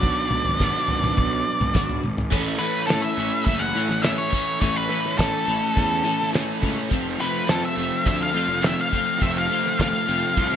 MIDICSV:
0, 0, Header, 1, 6, 480
1, 0, Start_track
1, 0, Tempo, 574163
1, 33, Time_signature, 4, 2, 24, 8
1, 8828, End_track
2, 0, Start_track
2, 0, Title_t, "Lead electric guitar"
2, 0, Program_c, 0, 29
2, 0, Note_on_c, 0, 74, 82
2, 1675, Note_off_c, 0, 74, 0
2, 2163, Note_on_c, 0, 71, 78
2, 2393, Note_off_c, 0, 71, 0
2, 2397, Note_on_c, 0, 69, 90
2, 2518, Note_off_c, 0, 69, 0
2, 2522, Note_on_c, 0, 76, 93
2, 2863, Note_off_c, 0, 76, 0
2, 2888, Note_on_c, 0, 76, 103
2, 3002, Note_on_c, 0, 78, 98
2, 3016, Note_off_c, 0, 76, 0
2, 3361, Note_on_c, 0, 76, 102
2, 3379, Note_off_c, 0, 78, 0
2, 3479, Note_off_c, 0, 76, 0
2, 3494, Note_on_c, 0, 73, 93
2, 3828, Note_off_c, 0, 73, 0
2, 3859, Note_on_c, 0, 73, 96
2, 3980, Note_off_c, 0, 73, 0
2, 3983, Note_on_c, 0, 71, 88
2, 4329, Note_off_c, 0, 71, 0
2, 4332, Note_on_c, 0, 69, 79
2, 5259, Note_off_c, 0, 69, 0
2, 6025, Note_on_c, 0, 71, 87
2, 6266, Note_off_c, 0, 71, 0
2, 6269, Note_on_c, 0, 69, 102
2, 6374, Note_off_c, 0, 69, 0
2, 6397, Note_on_c, 0, 76, 94
2, 6743, Note_off_c, 0, 76, 0
2, 6753, Note_on_c, 0, 76, 101
2, 6857, Note_off_c, 0, 76, 0
2, 6876, Note_on_c, 0, 77, 110
2, 7238, Note_off_c, 0, 77, 0
2, 7243, Note_on_c, 0, 76, 98
2, 7354, Note_off_c, 0, 76, 0
2, 7366, Note_on_c, 0, 77, 100
2, 7714, Note_off_c, 0, 77, 0
2, 7717, Note_on_c, 0, 76, 109
2, 7833, Note_off_c, 0, 76, 0
2, 7843, Note_on_c, 0, 77, 104
2, 8190, Note_off_c, 0, 77, 0
2, 8200, Note_on_c, 0, 77, 93
2, 8828, Note_off_c, 0, 77, 0
2, 8828, End_track
3, 0, Start_track
3, 0, Title_t, "Clean electric guitar"
3, 0, Program_c, 1, 27
3, 0, Note_on_c, 1, 47, 92
3, 0, Note_on_c, 1, 54, 90
3, 0, Note_on_c, 1, 59, 106
3, 0, Note_on_c, 1, 62, 101
3, 0, Note_on_c, 1, 66, 103
3, 1442, Note_off_c, 1, 47, 0
3, 1447, Note_off_c, 1, 54, 0
3, 1452, Note_off_c, 1, 59, 0
3, 1453, Note_off_c, 1, 62, 0
3, 1454, Note_on_c, 1, 47, 91
3, 1456, Note_off_c, 1, 66, 0
3, 1460, Note_on_c, 1, 54, 81
3, 1469, Note_on_c, 1, 59, 77
3, 1475, Note_on_c, 1, 62, 91
3, 1478, Note_on_c, 1, 66, 95
3, 1684, Note_off_c, 1, 47, 0
3, 1687, Note_off_c, 1, 54, 0
3, 1691, Note_off_c, 1, 59, 0
3, 1694, Note_off_c, 1, 62, 0
3, 1695, Note_off_c, 1, 66, 0
3, 1928, Note_on_c, 1, 45, 81
3, 1935, Note_on_c, 1, 52, 91
3, 1937, Note_on_c, 1, 57, 98
3, 1941, Note_on_c, 1, 61, 98
3, 1946, Note_on_c, 1, 64, 103
3, 2164, Note_off_c, 1, 45, 0
3, 2167, Note_on_c, 1, 45, 73
3, 2169, Note_off_c, 1, 52, 0
3, 2169, Note_off_c, 1, 57, 0
3, 2172, Note_on_c, 1, 52, 74
3, 2173, Note_on_c, 1, 57, 87
3, 2175, Note_off_c, 1, 61, 0
3, 2177, Note_off_c, 1, 64, 0
3, 2178, Note_on_c, 1, 61, 90
3, 2180, Note_on_c, 1, 64, 96
3, 2405, Note_off_c, 1, 45, 0
3, 2408, Note_on_c, 1, 45, 89
3, 2410, Note_off_c, 1, 52, 0
3, 2413, Note_on_c, 1, 52, 92
3, 2414, Note_off_c, 1, 61, 0
3, 2416, Note_off_c, 1, 57, 0
3, 2417, Note_on_c, 1, 61, 93
3, 2419, Note_on_c, 1, 57, 93
3, 2425, Note_off_c, 1, 64, 0
3, 2429, Note_on_c, 1, 64, 93
3, 2652, Note_off_c, 1, 45, 0
3, 2655, Note_on_c, 1, 45, 90
3, 2658, Note_off_c, 1, 52, 0
3, 2661, Note_on_c, 1, 52, 78
3, 2664, Note_off_c, 1, 57, 0
3, 2665, Note_off_c, 1, 61, 0
3, 2667, Note_off_c, 1, 64, 0
3, 2667, Note_on_c, 1, 57, 90
3, 2668, Note_on_c, 1, 61, 97
3, 2670, Note_on_c, 1, 64, 95
3, 2892, Note_off_c, 1, 45, 0
3, 2900, Note_off_c, 1, 52, 0
3, 2902, Note_on_c, 1, 45, 70
3, 2906, Note_off_c, 1, 61, 0
3, 2908, Note_off_c, 1, 57, 0
3, 2908, Note_off_c, 1, 64, 0
3, 2910, Note_on_c, 1, 52, 92
3, 2912, Note_on_c, 1, 57, 79
3, 2916, Note_on_c, 1, 61, 75
3, 2918, Note_on_c, 1, 64, 81
3, 3128, Note_off_c, 1, 45, 0
3, 3133, Note_off_c, 1, 52, 0
3, 3138, Note_on_c, 1, 45, 94
3, 3140, Note_off_c, 1, 61, 0
3, 3143, Note_on_c, 1, 52, 93
3, 3144, Note_off_c, 1, 57, 0
3, 3147, Note_on_c, 1, 57, 111
3, 3148, Note_off_c, 1, 64, 0
3, 3150, Note_on_c, 1, 61, 103
3, 3158, Note_on_c, 1, 64, 107
3, 3366, Note_off_c, 1, 45, 0
3, 3369, Note_off_c, 1, 52, 0
3, 3376, Note_on_c, 1, 45, 92
3, 3378, Note_off_c, 1, 61, 0
3, 3378, Note_off_c, 1, 64, 0
3, 3379, Note_on_c, 1, 52, 93
3, 3380, Note_off_c, 1, 57, 0
3, 3383, Note_on_c, 1, 57, 94
3, 3388, Note_on_c, 1, 61, 91
3, 3388, Note_on_c, 1, 64, 94
3, 3605, Note_off_c, 1, 45, 0
3, 3613, Note_off_c, 1, 52, 0
3, 3615, Note_on_c, 1, 45, 84
3, 3617, Note_off_c, 1, 61, 0
3, 3621, Note_off_c, 1, 57, 0
3, 3623, Note_on_c, 1, 52, 93
3, 3625, Note_off_c, 1, 64, 0
3, 3625, Note_on_c, 1, 57, 92
3, 3627, Note_on_c, 1, 61, 91
3, 3635, Note_on_c, 1, 64, 96
3, 3842, Note_off_c, 1, 45, 0
3, 3845, Note_off_c, 1, 52, 0
3, 3851, Note_off_c, 1, 61, 0
3, 3852, Note_on_c, 1, 45, 85
3, 3855, Note_on_c, 1, 52, 96
3, 3856, Note_off_c, 1, 57, 0
3, 3857, Note_off_c, 1, 64, 0
3, 3860, Note_on_c, 1, 57, 106
3, 3861, Note_on_c, 1, 61, 105
3, 3867, Note_on_c, 1, 64, 104
3, 4090, Note_off_c, 1, 45, 0
3, 4094, Note_off_c, 1, 52, 0
3, 4100, Note_on_c, 1, 45, 96
3, 4101, Note_off_c, 1, 61, 0
3, 4104, Note_off_c, 1, 64, 0
3, 4104, Note_on_c, 1, 52, 80
3, 4105, Note_off_c, 1, 57, 0
3, 4109, Note_on_c, 1, 57, 84
3, 4112, Note_on_c, 1, 61, 88
3, 4114, Note_on_c, 1, 64, 95
3, 4319, Note_off_c, 1, 45, 0
3, 4326, Note_off_c, 1, 52, 0
3, 4329, Note_on_c, 1, 45, 90
3, 4333, Note_off_c, 1, 61, 0
3, 4336, Note_off_c, 1, 57, 0
3, 4336, Note_on_c, 1, 52, 90
3, 4337, Note_off_c, 1, 64, 0
3, 4339, Note_on_c, 1, 57, 86
3, 4343, Note_on_c, 1, 61, 106
3, 4347, Note_on_c, 1, 64, 91
3, 4565, Note_off_c, 1, 45, 0
3, 4573, Note_off_c, 1, 52, 0
3, 4575, Note_on_c, 1, 45, 88
3, 4578, Note_off_c, 1, 61, 0
3, 4582, Note_off_c, 1, 57, 0
3, 4583, Note_on_c, 1, 52, 88
3, 4585, Note_off_c, 1, 64, 0
3, 4585, Note_on_c, 1, 57, 94
3, 4588, Note_on_c, 1, 61, 97
3, 4595, Note_on_c, 1, 64, 97
3, 4807, Note_off_c, 1, 45, 0
3, 4807, Note_off_c, 1, 52, 0
3, 4816, Note_off_c, 1, 61, 0
3, 4817, Note_on_c, 1, 45, 83
3, 4817, Note_on_c, 1, 52, 73
3, 4819, Note_off_c, 1, 57, 0
3, 4820, Note_off_c, 1, 64, 0
3, 4822, Note_on_c, 1, 57, 76
3, 4826, Note_on_c, 1, 61, 89
3, 4830, Note_on_c, 1, 64, 87
3, 5036, Note_off_c, 1, 45, 0
3, 5041, Note_off_c, 1, 52, 0
3, 5046, Note_on_c, 1, 45, 105
3, 5047, Note_off_c, 1, 61, 0
3, 5051, Note_off_c, 1, 57, 0
3, 5051, Note_on_c, 1, 52, 95
3, 5053, Note_off_c, 1, 64, 0
3, 5054, Note_on_c, 1, 57, 98
3, 5057, Note_on_c, 1, 61, 108
3, 5063, Note_on_c, 1, 64, 109
3, 5286, Note_off_c, 1, 45, 0
3, 5287, Note_off_c, 1, 52, 0
3, 5296, Note_on_c, 1, 45, 98
3, 5297, Note_on_c, 1, 52, 102
3, 5299, Note_off_c, 1, 61, 0
3, 5300, Note_off_c, 1, 64, 0
3, 5305, Note_off_c, 1, 57, 0
3, 5308, Note_on_c, 1, 57, 95
3, 5309, Note_on_c, 1, 61, 101
3, 5310, Note_on_c, 1, 64, 102
3, 5520, Note_off_c, 1, 45, 0
3, 5525, Note_off_c, 1, 52, 0
3, 5530, Note_on_c, 1, 45, 93
3, 5532, Note_off_c, 1, 64, 0
3, 5535, Note_on_c, 1, 52, 96
3, 5536, Note_off_c, 1, 61, 0
3, 5538, Note_off_c, 1, 57, 0
3, 5541, Note_on_c, 1, 57, 91
3, 5542, Note_on_c, 1, 64, 96
3, 5546, Note_on_c, 1, 61, 98
3, 5757, Note_off_c, 1, 45, 0
3, 5760, Note_off_c, 1, 52, 0
3, 5763, Note_off_c, 1, 64, 0
3, 5765, Note_off_c, 1, 61, 0
3, 5775, Note_on_c, 1, 41, 81
3, 5781, Note_on_c, 1, 48, 103
3, 5785, Note_on_c, 1, 53, 106
3, 5786, Note_off_c, 1, 57, 0
3, 5790, Note_on_c, 1, 57, 89
3, 5794, Note_on_c, 1, 60, 99
3, 5798, Note_on_c, 1, 65, 110
3, 6010, Note_off_c, 1, 41, 0
3, 6011, Note_off_c, 1, 48, 0
3, 6014, Note_on_c, 1, 41, 96
3, 6020, Note_off_c, 1, 53, 0
3, 6020, Note_off_c, 1, 57, 0
3, 6021, Note_on_c, 1, 48, 82
3, 6024, Note_on_c, 1, 53, 85
3, 6024, Note_on_c, 1, 57, 94
3, 6025, Note_off_c, 1, 60, 0
3, 6028, Note_on_c, 1, 60, 101
3, 6030, Note_off_c, 1, 65, 0
3, 6034, Note_on_c, 1, 65, 92
3, 6247, Note_off_c, 1, 48, 0
3, 6250, Note_off_c, 1, 41, 0
3, 6254, Note_on_c, 1, 41, 91
3, 6257, Note_on_c, 1, 48, 85
3, 6261, Note_off_c, 1, 53, 0
3, 6264, Note_off_c, 1, 57, 0
3, 6264, Note_on_c, 1, 53, 96
3, 6267, Note_off_c, 1, 60, 0
3, 6268, Note_on_c, 1, 57, 91
3, 6270, Note_off_c, 1, 65, 0
3, 6270, Note_on_c, 1, 60, 103
3, 6273, Note_on_c, 1, 65, 104
3, 6491, Note_off_c, 1, 48, 0
3, 6496, Note_off_c, 1, 41, 0
3, 6499, Note_on_c, 1, 41, 90
3, 6500, Note_off_c, 1, 53, 0
3, 6501, Note_on_c, 1, 48, 92
3, 6504, Note_on_c, 1, 53, 85
3, 6509, Note_off_c, 1, 57, 0
3, 6511, Note_off_c, 1, 60, 0
3, 6512, Note_on_c, 1, 57, 91
3, 6514, Note_on_c, 1, 60, 91
3, 6516, Note_off_c, 1, 65, 0
3, 6519, Note_on_c, 1, 65, 99
3, 6733, Note_off_c, 1, 41, 0
3, 6738, Note_off_c, 1, 48, 0
3, 6739, Note_off_c, 1, 53, 0
3, 6743, Note_on_c, 1, 41, 78
3, 6746, Note_off_c, 1, 60, 0
3, 6748, Note_on_c, 1, 48, 78
3, 6749, Note_on_c, 1, 53, 83
3, 6751, Note_off_c, 1, 57, 0
3, 6753, Note_off_c, 1, 65, 0
3, 6755, Note_on_c, 1, 57, 87
3, 6756, Note_on_c, 1, 60, 88
3, 6763, Note_on_c, 1, 65, 91
3, 6966, Note_off_c, 1, 41, 0
3, 6967, Note_off_c, 1, 48, 0
3, 6974, Note_off_c, 1, 53, 0
3, 6976, Note_on_c, 1, 41, 99
3, 6977, Note_on_c, 1, 48, 90
3, 6981, Note_off_c, 1, 60, 0
3, 6984, Note_off_c, 1, 57, 0
3, 6984, Note_on_c, 1, 53, 110
3, 6985, Note_off_c, 1, 65, 0
3, 6987, Note_on_c, 1, 57, 109
3, 6991, Note_on_c, 1, 60, 111
3, 6995, Note_on_c, 1, 65, 112
3, 7212, Note_off_c, 1, 41, 0
3, 7218, Note_off_c, 1, 48, 0
3, 7222, Note_off_c, 1, 53, 0
3, 7222, Note_on_c, 1, 41, 81
3, 7227, Note_off_c, 1, 60, 0
3, 7228, Note_off_c, 1, 57, 0
3, 7228, Note_on_c, 1, 48, 95
3, 7231, Note_off_c, 1, 65, 0
3, 7231, Note_on_c, 1, 57, 92
3, 7232, Note_on_c, 1, 53, 90
3, 7237, Note_on_c, 1, 60, 105
3, 7241, Note_on_c, 1, 65, 100
3, 7450, Note_off_c, 1, 41, 0
3, 7455, Note_off_c, 1, 48, 0
3, 7460, Note_off_c, 1, 53, 0
3, 7460, Note_on_c, 1, 41, 94
3, 7465, Note_on_c, 1, 48, 84
3, 7469, Note_off_c, 1, 60, 0
3, 7470, Note_on_c, 1, 53, 98
3, 7471, Note_off_c, 1, 57, 0
3, 7473, Note_off_c, 1, 65, 0
3, 7474, Note_on_c, 1, 57, 87
3, 7479, Note_on_c, 1, 60, 86
3, 7483, Note_on_c, 1, 65, 98
3, 7690, Note_off_c, 1, 41, 0
3, 7693, Note_off_c, 1, 48, 0
3, 7700, Note_off_c, 1, 53, 0
3, 7700, Note_on_c, 1, 41, 90
3, 7703, Note_on_c, 1, 48, 97
3, 7707, Note_off_c, 1, 60, 0
3, 7709, Note_off_c, 1, 57, 0
3, 7710, Note_on_c, 1, 53, 105
3, 7712, Note_off_c, 1, 65, 0
3, 7712, Note_on_c, 1, 57, 104
3, 7718, Note_on_c, 1, 60, 112
3, 7722, Note_on_c, 1, 65, 110
3, 7926, Note_off_c, 1, 41, 0
3, 7931, Note_off_c, 1, 48, 0
3, 7936, Note_on_c, 1, 41, 87
3, 7939, Note_off_c, 1, 53, 0
3, 7941, Note_on_c, 1, 48, 87
3, 7943, Note_off_c, 1, 60, 0
3, 7949, Note_off_c, 1, 57, 0
3, 7949, Note_on_c, 1, 53, 93
3, 7950, Note_off_c, 1, 65, 0
3, 7952, Note_on_c, 1, 57, 91
3, 7953, Note_on_c, 1, 60, 87
3, 7960, Note_on_c, 1, 65, 98
3, 8170, Note_off_c, 1, 41, 0
3, 8174, Note_off_c, 1, 48, 0
3, 8180, Note_on_c, 1, 41, 91
3, 8181, Note_off_c, 1, 53, 0
3, 8184, Note_on_c, 1, 48, 85
3, 8190, Note_off_c, 1, 60, 0
3, 8191, Note_off_c, 1, 65, 0
3, 8191, Note_on_c, 1, 53, 92
3, 8193, Note_off_c, 1, 57, 0
3, 8196, Note_on_c, 1, 57, 96
3, 8200, Note_on_c, 1, 60, 98
3, 8201, Note_on_c, 1, 65, 88
3, 8409, Note_off_c, 1, 41, 0
3, 8417, Note_off_c, 1, 48, 0
3, 8418, Note_off_c, 1, 53, 0
3, 8419, Note_on_c, 1, 41, 83
3, 8427, Note_on_c, 1, 48, 87
3, 8428, Note_on_c, 1, 53, 97
3, 8429, Note_off_c, 1, 65, 0
3, 8430, Note_off_c, 1, 60, 0
3, 8431, Note_off_c, 1, 57, 0
3, 8434, Note_on_c, 1, 57, 81
3, 8439, Note_on_c, 1, 65, 85
3, 8440, Note_on_c, 1, 60, 94
3, 8661, Note_off_c, 1, 41, 0
3, 8670, Note_off_c, 1, 48, 0
3, 8671, Note_on_c, 1, 41, 75
3, 8674, Note_off_c, 1, 53, 0
3, 8680, Note_off_c, 1, 60, 0
3, 8680, Note_on_c, 1, 48, 89
3, 8682, Note_off_c, 1, 57, 0
3, 8684, Note_off_c, 1, 65, 0
3, 8684, Note_on_c, 1, 53, 72
3, 8685, Note_on_c, 1, 57, 76
3, 8690, Note_on_c, 1, 60, 82
3, 8694, Note_on_c, 1, 65, 86
3, 8828, Note_off_c, 1, 41, 0
3, 8828, Note_off_c, 1, 48, 0
3, 8828, Note_off_c, 1, 53, 0
3, 8828, Note_off_c, 1, 57, 0
3, 8828, Note_off_c, 1, 60, 0
3, 8828, Note_off_c, 1, 65, 0
3, 8828, End_track
4, 0, Start_track
4, 0, Title_t, "Overdriven electric guitar"
4, 0, Program_c, 2, 29
4, 490, Note_on_c, 2, 54, 78
4, 511, Note_on_c, 2, 59, 80
4, 520, Note_on_c, 2, 62, 82
4, 1679, Note_off_c, 2, 54, 0
4, 1689, Note_off_c, 2, 59, 0
4, 1694, Note_off_c, 2, 62, 0
4, 7198, Note_on_c, 2, 53, 77
4, 7438, Note_off_c, 2, 53, 0
4, 8828, End_track
5, 0, Start_track
5, 0, Title_t, "Picked electric bass"
5, 0, Program_c, 3, 34
5, 30, Note_on_c, 3, 35, 113
5, 344, Note_off_c, 3, 35, 0
5, 395, Note_on_c, 3, 32, 93
5, 601, Note_off_c, 3, 32, 0
5, 742, Note_on_c, 3, 32, 97
5, 953, Note_off_c, 3, 32, 0
5, 981, Note_on_c, 3, 35, 88
5, 1192, Note_off_c, 3, 35, 0
5, 1342, Note_on_c, 3, 32, 95
5, 1656, Note_off_c, 3, 32, 0
5, 1708, Note_on_c, 3, 32, 85
5, 1914, Note_off_c, 3, 32, 0
5, 1942, Note_on_c, 3, 33, 94
5, 2150, Note_off_c, 3, 33, 0
5, 2429, Note_on_c, 3, 45, 77
5, 2529, Note_off_c, 3, 45, 0
5, 2658, Note_on_c, 3, 33, 89
5, 2762, Note_off_c, 3, 33, 0
5, 2901, Note_on_c, 3, 30, 95
5, 3108, Note_off_c, 3, 30, 0
5, 3134, Note_on_c, 3, 45, 79
5, 3240, Note_off_c, 3, 45, 0
5, 3253, Note_on_c, 3, 33, 96
5, 3463, Note_off_c, 3, 33, 0
5, 3864, Note_on_c, 3, 33, 88
5, 4068, Note_off_c, 3, 33, 0
5, 4340, Note_on_c, 3, 33, 84
5, 4441, Note_off_c, 3, 33, 0
5, 4582, Note_on_c, 3, 33, 90
5, 4683, Note_off_c, 3, 33, 0
5, 4825, Note_on_c, 3, 40, 98
5, 5029, Note_off_c, 3, 40, 0
5, 5537, Note_on_c, 3, 37, 78
5, 5640, Note_off_c, 3, 37, 0
5, 5782, Note_on_c, 3, 29, 101
5, 5988, Note_off_c, 3, 29, 0
5, 6269, Note_on_c, 3, 41, 87
5, 6367, Note_off_c, 3, 41, 0
5, 6501, Note_on_c, 3, 29, 83
5, 6603, Note_off_c, 3, 29, 0
5, 6737, Note_on_c, 3, 38, 90
5, 6947, Note_off_c, 3, 38, 0
5, 6979, Note_on_c, 3, 41, 82
5, 7083, Note_off_c, 3, 41, 0
5, 7097, Note_on_c, 3, 29, 92
5, 7308, Note_off_c, 3, 29, 0
5, 7713, Note_on_c, 3, 29, 101
5, 7918, Note_off_c, 3, 29, 0
5, 8190, Note_on_c, 3, 29, 83
5, 8293, Note_off_c, 3, 29, 0
5, 8437, Note_on_c, 3, 29, 84
5, 8537, Note_off_c, 3, 29, 0
5, 8668, Note_on_c, 3, 36, 102
5, 8828, Note_off_c, 3, 36, 0
5, 8828, End_track
6, 0, Start_track
6, 0, Title_t, "Drums"
6, 18, Note_on_c, 9, 43, 78
6, 27, Note_on_c, 9, 36, 106
6, 102, Note_off_c, 9, 43, 0
6, 111, Note_off_c, 9, 36, 0
6, 256, Note_on_c, 9, 43, 78
6, 256, Note_on_c, 9, 47, 70
6, 340, Note_off_c, 9, 43, 0
6, 340, Note_off_c, 9, 47, 0
6, 374, Note_on_c, 9, 43, 76
6, 458, Note_off_c, 9, 43, 0
6, 505, Note_on_c, 9, 36, 108
6, 510, Note_on_c, 9, 38, 66
6, 588, Note_off_c, 9, 36, 0
6, 593, Note_off_c, 9, 38, 0
6, 736, Note_on_c, 9, 43, 79
6, 819, Note_off_c, 9, 43, 0
6, 867, Note_on_c, 9, 43, 77
6, 867, Note_on_c, 9, 47, 72
6, 950, Note_off_c, 9, 43, 0
6, 950, Note_off_c, 9, 47, 0
6, 980, Note_on_c, 9, 43, 80
6, 986, Note_on_c, 9, 36, 100
6, 1063, Note_off_c, 9, 43, 0
6, 1070, Note_off_c, 9, 36, 0
6, 1347, Note_on_c, 9, 43, 90
6, 1347, Note_on_c, 9, 47, 75
6, 1430, Note_off_c, 9, 43, 0
6, 1430, Note_off_c, 9, 47, 0
6, 1463, Note_on_c, 9, 36, 115
6, 1472, Note_on_c, 9, 38, 79
6, 1547, Note_off_c, 9, 36, 0
6, 1556, Note_off_c, 9, 38, 0
6, 1583, Note_on_c, 9, 43, 84
6, 1666, Note_off_c, 9, 43, 0
6, 1702, Note_on_c, 9, 47, 76
6, 1785, Note_off_c, 9, 47, 0
6, 1825, Note_on_c, 9, 43, 92
6, 1908, Note_off_c, 9, 43, 0
6, 1938, Note_on_c, 9, 49, 113
6, 1941, Note_on_c, 9, 36, 92
6, 2022, Note_off_c, 9, 49, 0
6, 2025, Note_off_c, 9, 36, 0
6, 2173, Note_on_c, 9, 39, 66
6, 2256, Note_off_c, 9, 39, 0
6, 2414, Note_on_c, 9, 39, 78
6, 2418, Note_on_c, 9, 42, 75
6, 2427, Note_on_c, 9, 38, 107
6, 2498, Note_off_c, 9, 39, 0
6, 2501, Note_off_c, 9, 42, 0
6, 2511, Note_off_c, 9, 38, 0
6, 2898, Note_on_c, 9, 36, 115
6, 2899, Note_on_c, 9, 42, 60
6, 2982, Note_off_c, 9, 36, 0
6, 2982, Note_off_c, 9, 42, 0
6, 3268, Note_on_c, 9, 38, 34
6, 3351, Note_off_c, 9, 38, 0
6, 3373, Note_on_c, 9, 42, 67
6, 3381, Note_on_c, 9, 39, 97
6, 3382, Note_on_c, 9, 38, 112
6, 3456, Note_off_c, 9, 42, 0
6, 3464, Note_off_c, 9, 39, 0
6, 3465, Note_off_c, 9, 38, 0
6, 3618, Note_on_c, 9, 36, 79
6, 3702, Note_off_c, 9, 36, 0
6, 3860, Note_on_c, 9, 36, 98
6, 3861, Note_on_c, 9, 42, 62
6, 3944, Note_off_c, 9, 36, 0
6, 3945, Note_off_c, 9, 42, 0
6, 4098, Note_on_c, 9, 39, 63
6, 4181, Note_off_c, 9, 39, 0
6, 4228, Note_on_c, 9, 38, 35
6, 4311, Note_off_c, 9, 38, 0
6, 4336, Note_on_c, 9, 39, 91
6, 4342, Note_on_c, 9, 36, 83
6, 4342, Note_on_c, 9, 42, 66
6, 4351, Note_on_c, 9, 38, 98
6, 4420, Note_off_c, 9, 39, 0
6, 4425, Note_off_c, 9, 36, 0
6, 4425, Note_off_c, 9, 42, 0
6, 4434, Note_off_c, 9, 38, 0
6, 4824, Note_on_c, 9, 36, 112
6, 4824, Note_on_c, 9, 42, 66
6, 4907, Note_off_c, 9, 36, 0
6, 4908, Note_off_c, 9, 42, 0
6, 4960, Note_on_c, 9, 38, 35
6, 5044, Note_off_c, 9, 38, 0
6, 5199, Note_on_c, 9, 38, 31
6, 5283, Note_off_c, 9, 38, 0
6, 5300, Note_on_c, 9, 39, 103
6, 5303, Note_on_c, 9, 42, 76
6, 5313, Note_on_c, 9, 38, 108
6, 5384, Note_off_c, 9, 39, 0
6, 5387, Note_off_c, 9, 42, 0
6, 5396, Note_off_c, 9, 38, 0
6, 5543, Note_on_c, 9, 36, 88
6, 5627, Note_off_c, 9, 36, 0
6, 5776, Note_on_c, 9, 42, 74
6, 5781, Note_on_c, 9, 36, 96
6, 5859, Note_off_c, 9, 42, 0
6, 5864, Note_off_c, 9, 36, 0
6, 6016, Note_on_c, 9, 39, 66
6, 6099, Note_off_c, 9, 39, 0
6, 6250, Note_on_c, 9, 39, 80
6, 6255, Note_on_c, 9, 42, 72
6, 6264, Note_on_c, 9, 38, 110
6, 6334, Note_off_c, 9, 39, 0
6, 6338, Note_off_c, 9, 42, 0
6, 6348, Note_off_c, 9, 38, 0
6, 6735, Note_on_c, 9, 42, 77
6, 6741, Note_on_c, 9, 36, 117
6, 6819, Note_off_c, 9, 42, 0
6, 6825, Note_off_c, 9, 36, 0
6, 7217, Note_on_c, 9, 42, 70
6, 7223, Note_on_c, 9, 39, 108
6, 7226, Note_on_c, 9, 38, 117
6, 7301, Note_off_c, 9, 42, 0
6, 7306, Note_off_c, 9, 39, 0
6, 7310, Note_off_c, 9, 38, 0
6, 7465, Note_on_c, 9, 36, 74
6, 7548, Note_off_c, 9, 36, 0
6, 7699, Note_on_c, 9, 42, 59
6, 7706, Note_on_c, 9, 36, 100
6, 7783, Note_off_c, 9, 42, 0
6, 7790, Note_off_c, 9, 36, 0
6, 8076, Note_on_c, 9, 38, 32
6, 8160, Note_off_c, 9, 38, 0
6, 8184, Note_on_c, 9, 39, 94
6, 8189, Note_on_c, 9, 36, 72
6, 8192, Note_on_c, 9, 42, 70
6, 8201, Note_on_c, 9, 38, 109
6, 8267, Note_off_c, 9, 39, 0
6, 8273, Note_off_c, 9, 36, 0
6, 8275, Note_off_c, 9, 42, 0
6, 8284, Note_off_c, 9, 38, 0
6, 8671, Note_on_c, 9, 42, 76
6, 8672, Note_on_c, 9, 36, 105
6, 8755, Note_off_c, 9, 42, 0
6, 8756, Note_off_c, 9, 36, 0
6, 8798, Note_on_c, 9, 38, 35
6, 8828, Note_off_c, 9, 38, 0
6, 8828, End_track
0, 0, End_of_file